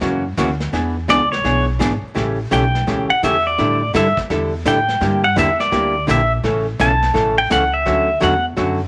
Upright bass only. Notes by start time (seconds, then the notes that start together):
0.01 F#2
0.37 D2
0.73 E2
1.09 C#2
1.44 B1
1.80 G#1
2.03 muted upright bass stroke
2.16 A1
2.52 B1
2.88 C#2
3.10 muted upright bass stroke
3.23 E2
3.58 A2
3.94 G2
4.17 muted upright bass stroke
4.30 E2
4.65 A2
5.01 G2
5.37 E2
5.72 D2
6.08 A#1
6.44 A1
6.80 B1
7.15 A1
7.51 C#2
7.86 D2
8.22 E2
8.57 F#2